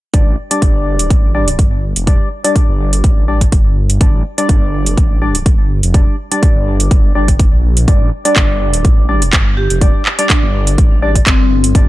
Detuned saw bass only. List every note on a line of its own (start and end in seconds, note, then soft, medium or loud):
0.14 0.25 G1 medium
0.27 0.36 A1 medium
0.62 1.09 G1 medium
1.10 1.57 A1 medium
1.59 1.94 G1 medium
1.96 2.18 F1 medium
2.69 3.02 G1 medium
3.04 3.51 A1 loud
3.52 3.99 G1 medium
4.01 4.12 G1 medium
4.14 4.23 A1 medium
4.49 4.96 G1 loud
4.98 5.44 A1 medium
5.46 5.81 G1 medium
5.83 6.05 F1 medium
6.56 6.89 G1 loud
6.91 7.13 G1 loud
7.15 7.50 G1 loud
7.53 7.86 A#1 loud
7.88 7.99 G1 medium
8.01 8.10 A1 loud
8.36 8.83 G1 medium
8.85 9.31 A1 medium
9.33 9.68 G1 medium
9.70 9.92 F1 medium
10.43 10.76 G1 loud
10.78 11.25 A1 medium
11.27 11.73 G1 loud
11.75 11.86 G1 medium